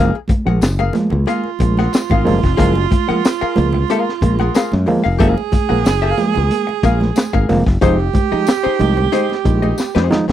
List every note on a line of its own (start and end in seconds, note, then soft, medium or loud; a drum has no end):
0.00 0.11 F#1 loud
0.00 0.11 F3 medium
0.00 0.11 G#3 medium
0.00 0.11 A#3 loud
0.00 0.19 G#4 loud
0.00 0.15 A#4 loud
0.00 0.14 F5 loud
0.15 muted hollow-body jazz guitar stroke soft
0.28 muted hollow-body jazz guitar stroke soft
0.28 kick loud
0.28 closed hi-hat medium
0.28 high conga medium
0.46 0.59 A#1 medium
0.46 0.59 F3 medium
0.46 0.59 G#3 medium
0.46 0.59 A#3 medium
0.46 0.60 G#4 soft
0.46 0.61 A#4 soft
0.46 0.62 F#5 medium
0.61 0.89 F#1 medium
0.61 muted hollow-body jazz guitar stroke soft
0.61 snare loud
0.61 closed hi-hat medium
0.61 tambourine loud
0.61 muted conga soft
0.79 0.94 G#4 medium
0.79 0.94 A#4 medium
0.79 0.94 F5 medium
0.79 muted conga soft
0.93 1.09 F3 medium
0.93 1.09 G#3 medium
0.93 1.09 A#3 medium
0.93 muted hollow-body jazz guitar stroke soft
0.93 snare soft
0.93 closed hi-hat medium
0.93 high conga medium
1.10 1.25 C#2 medium
1.10 1.18 G#3 soft
1.10 1.18 A#3 soft
1.10 muted hollow-body jazz guitar stroke soft
1.10 low conga medium
1.26 1.42 G#3 medium
1.26 1.42 A#3 medium
1.26 4.83 F4 medium
1.26 1.49 G#4 medium
1.26 1.49 A#4 medium
1.26 1.49 F5 medium
1.26 closed hi-hat medium
1.26 muted conga soft
1.44 muted conga soft
1.59 1.86 A#1 medium
1.59 1.75 G#3 medium
1.59 1.75 A#3 medium
1.59 muted hollow-body jazz guitar stroke soft
1.59 kick medium
1.59 closed hi-hat medium
1.59 high conga soft
1.77 1.91 G#4 medium
1.77 1.92 A#4 medium
1.77 1.93 F#5 medium
1.77 snare soft
1.77 high conga medium
1.93 muted hollow-body jazz guitar stroke soft
1.93 snare loud
1.93 closed hi-hat medium
1.93 tambourine loud
1.93 muted conga soft
2.10 2.23 G#1 medium
2.10 2.25 G#4 medium
2.10 2.25 A#4 medium
2.10 2.25 F5 medium
2.10 kick loud
2.10 muted conga soft
2.10 high conga medium
2.25 2.41 F#1 medium
2.25 2.40 F3 loud
2.25 2.40 G#3 loud
2.25 2.40 A#3 loud
2.25 muted hollow-body jazz guitar stroke soft
2.25 snare soft
2.25 open hi-hat medium
2.25 low conga medium
2.43 2.56 F1 medium
2.43 muted hollow-body jazz guitar stroke soft
2.43 kick medium
2.43 snare soft
2.57 2.85 F#1 loud
2.57 2.73 F3 medium
2.57 2.73 G#3 medium
2.57 2.73 A#3 loud
2.57 2.79 G#4 medium
2.57 2.75 A#4 medium
2.57 2.74 F5 medium
2.57 kick loud
2.57 closed hi-hat medium
2.75 muted hollow-body jazz guitar stroke medium
2.75 muted conga soft
2.91 muted hollow-body jazz guitar stroke soft
2.91 kick loud
2.91 closed hi-hat medium
2.91 high conga medium
3.08 3.21 F3 medium
3.08 3.21 G#3 medium
3.08 3.21 A#3 medium
3.08 3.23 G#4 medium
3.08 3.23 A#4 medium
3.08 3.24 F#5 medium
3.08 muted fingered electric bass stroke soft
3.24 muted hollow-body jazz guitar stroke soft
3.24 snare loud
3.24 closed hi-hat loud
3.24 tambourine medium
3.41 3.55 G#4 medium
3.41 3.56 A#4 medium
3.41 3.57 F5 medium
3.41 muted fingered electric bass stroke soft
3.56 3.84 C#2 loud
3.56 3.71 F3 medium
3.56 3.71 G#3 medium
3.56 3.71 A#3 medium
3.56 muted hollow-body jazz guitar stroke soft
3.56 closed hi-hat medium
3.56 high conga medium
3.73 3.80 G#3 soft
3.73 3.80 A#3 soft
3.73 muted hollow-body jazz guitar stroke soft
3.73 low conga medium
3.88 4.04 G#3 medium
3.88 4.04 A#3 medium
3.88 4.11 G#4 medium
3.88 4.11 A#4 medium
3.88 4.11 F5 medium
3.88 closed hi-hat medium
3.88 muted conga soft
4.09 snare soft
4.21 4.48 A#1 loud
4.21 4.36 G#3 medium
4.21 4.37 A#3 medium
4.21 muted hollow-body jazz guitar stroke soft
4.21 kick medium
4.21 closed hi-hat medium
4.21 high conga medium
4.39 4.54 G#4 medium
4.39 4.54 A#4 medium
4.39 4.55 F#5 medium
4.39 high conga medium
4.54 4.76 G#4 medium
4.54 4.76 A#4 medium
4.54 4.77 F5 medium
4.54 snare loud
4.54 closed hi-hat medium
4.54 tambourine medium
4.54 muted conga soft
4.72 4.85 F#2 loud
4.72 snare soft
4.72 high conga medium
4.86 5.02 F3 loud
4.86 5.02 G#3 loud
4.86 5.02 A#3 loud
4.86 muted hollow-body jazz guitar stroke medium
4.86 open hi-hat medium
4.86 low conga medium
5.04 5.21 F1 loud
5.04 5.17 G#4 medium
5.04 5.18 A#4 medium
5.04 5.19 F5 medium
5.19 5.34 F#1 loud
5.19 5.34 F3 medium
5.19 5.34 G#3 medium
5.19 5.35 A#3 loud
5.19 5.41 G#4 medium
5.19 7.45 G#4 loud
5.19 5.37 A#4 medium
5.19 5.35 F5 medium
5.19 kick loud
5.19 closed hi-hat medium
5.37 muted hollow-body jazz guitar stroke soft
5.37 muted conga soft
5.52 muted hollow-body jazz guitar stroke soft
5.52 kick loud
5.52 closed hi-hat medium
5.52 high conga medium
5.69 5.83 A#1 medium
5.69 5.83 F3 medium
5.69 5.83 G#3 medium
5.69 5.83 A#3 medium
5.69 5.83 G#4 soft
5.69 5.83 A#4 medium
5.69 5.85 F#5 medium
5.84 6.12 F#1 medium
5.84 muted hollow-body jazz guitar stroke soft
5.84 snare loud
5.84 closed hi-hat medium
5.84 tambourine loud
5.84 muted conga soft
6.02 6.16 G#4 medium
6.02 6.16 A#4 medium
6.02 6.17 F5 medium
6.17 6.32 F3 medium
6.17 6.32 G#3 medium
6.17 6.33 A#3 medium
6.17 muted hollow-body jazz guitar stroke soft
6.17 snare soft
6.17 closed hi-hat medium
6.17 high conga medium
6.34 6.49 C#2 medium
6.34 muted hollow-body jazz guitar stroke soft
6.34 low conga medium
6.50 6.65 G#3 medium
6.50 6.65 A#3 medium
6.50 closed hi-hat medium
6.50 muted conga soft
6.67 muted hollow-body jazz guitar stroke soft
6.67 muted conga soft
6.83 7.10 A#1 medium
6.83 6.98 G#3 medium
6.83 6.98 A#3 medium
6.83 7.05 G#4 loud
6.83 7.00 A#4 medium
6.83 6.99 F5 loud
6.83 kick medium
6.83 closed hi-hat medium
6.83 high conga medium
7.00 muted hollow-body jazz guitar stroke soft
7.00 snare soft
7.00 high conga medium
7.16 muted hollow-body jazz guitar stroke soft
7.16 snare loud
7.16 closed hi-hat medium
7.16 tambourine medium
7.16 muted conga soft
7.33 7.46 G#1 medium
7.33 7.48 G#4 medium
7.33 7.48 A#4 medium
7.33 7.49 F5 medium
7.33 kick medium
7.33 high conga medium
7.49 7.63 F1 medium
7.49 7.64 F3 medium
7.49 7.64 G#3 medium
7.49 7.64 A#3 loud
7.49 muted hollow-body jazz guitar stroke soft
7.49 snare soft
7.49 open hi-hat medium
7.49 low conga medium
7.66 7.79 F#1 medium
7.66 muted hollow-body jazz guitar stroke soft
7.66 kick loud
7.66 snare soft
7.81 8.08 F1 loud
7.81 7.96 F3 loud
7.81 7.96 G#3 medium
7.81 8.03 D#4 medium
7.81 7.97 D#4 loud
7.81 10.07 G4 loud
7.81 7.99 G#4 medium
7.81 7.98 C5 medium
7.81 kick loud
7.81 closed hi-hat loud
7.81 muted conga soft
7.99 muted hollow-body jazz guitar stroke soft
8.13 muted hollow-body jazz guitar stroke soft
8.13 kick loud
8.13 closed hi-hat medium
8.13 high conga medium
8.31 8.45 F3 medium
8.31 8.45 G#3 medium
8.31 8.45 D#4 medium
8.31 8.46 D#4 soft
8.31 8.46 G#4 medium
8.31 8.47 D#5 medium
8.31 muted fingered electric bass stroke soft
8.47 muted hollow-body jazz guitar stroke medium
8.47 snare loud
8.47 closed hi-hat medium
8.47 tambourine medium
8.47 muted conga soft
8.63 8.78 D#4 medium
8.63 8.79 G#4 medium
8.63 8.79 C5 medium
8.63 muted fingered electric bass stroke soft
8.79 9.07 C2 loud
8.79 8.94 F3 medium
8.79 8.94 G#3 medium
8.79 8.94 D#4 medium
8.79 muted hollow-body jazz guitar stroke soft
8.79 closed hi-hat medium
8.79 high conga medium
8.97 9.03 G#3 soft
8.97 9.03 D#4 soft
8.97 muted hollow-body jazz guitar stroke soft
8.97 low conga medium
9.12 9.27 G#3 medium
9.12 9.34 D#4 medium
9.12 9.27 D#4 medium
9.12 9.34 G#4 loud
9.12 9.34 C5 loud
9.12 closed hi-hat medium
9.12 muted conga soft
9.30 snare soft
9.30 muted conga soft
9.45 9.72 A#1 medium
9.45 9.60 G#3 medium
9.45 9.60 D#4 medium
9.45 muted hollow-body jazz guitar stroke soft
9.45 kick medium
9.45 closed hi-hat medium
9.45 high conga medium
9.62 9.76 D#4 soft
9.62 9.77 G#4 medium
9.62 9.78 D#5 medium
9.62 high conga medium
9.78 muted hollow-body jazz guitar stroke soft
9.78 snare medium
9.78 tambourine medium
9.95 10.08 F2 loud
9.95 10.09 D#4 medium
9.95 10.09 G#4 medium
9.95 10.10 C5 medium
9.95 snare medium
9.95 muted conga soft
9.95 high conga medium
10.10 10.25 F3 loud
10.10 10.25 G#3 medium
10.10 10.25 D#4 loud
10.10 muted hollow-body jazz guitar stroke soft
10.10 snare medium
10.10 low conga medium
10.28 10.32 D#1 medium
10.28 muted hollow-body jazz guitar stroke medium